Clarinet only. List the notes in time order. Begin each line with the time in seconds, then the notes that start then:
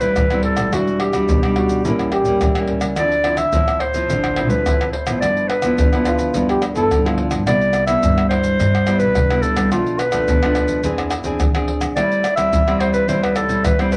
0.00 B4
0.44 A4
0.73 F#4
1.00 G4
2.98 D5
3.37 E5
3.80 C5
4.50 B4
4.91 C5
5.20 D5
5.48 B4
7.47 D5
7.87 E5
8.29 C5
8.99 B4
9.42 A4
9.72 F4
9.99 B4
11.96 D5
12.36 E5
12.80 C5
12.93 B4
13.08 C5
13.23 B4
13.36 A4
13.65 B4
13.80 C5
13.92 B4